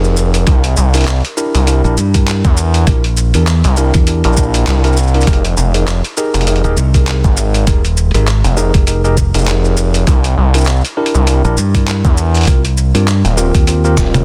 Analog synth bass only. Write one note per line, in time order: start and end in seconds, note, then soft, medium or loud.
0.00 0.45 F1 loud
0.47 0.75 C2 loud
0.77 1.22 C2 loud
1.54 1.82 C2 loud
2.45 2.85 E2 loud
3.65 3.92 C2 medium
4.25 4.65 A#1 loud
4.67 5.25 C2 loud
5.27 5.55 F1 medium
5.57 6.02 F1 loud
6.34 6.62 F1 loud
7.24 7.65 G#1 loud
8.44 8.72 F1 loud
9.34 10.05 F1 loud
10.07 10.35 C2 loud
10.38 10.82 C2 loud
11.15 11.42 C2 loud
12.05 12.45 E2 loud
13.25 13.52 D#1 medium
13.97 14.25 D#1 loud